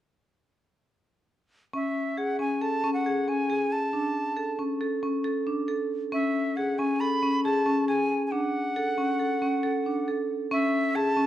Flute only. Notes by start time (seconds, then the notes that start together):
1.75 E5
2.18 F#5
2.40 G#5
2.62 A5
2.94 F#5
3.29 G#5
3.72 A5
6.13 E5
6.56 F#5
6.78 G#5
7.00 B5
7.44 A5
7.88 G#5
8.27 G#5
8.31 F#5
10.52 E5
10.96 A5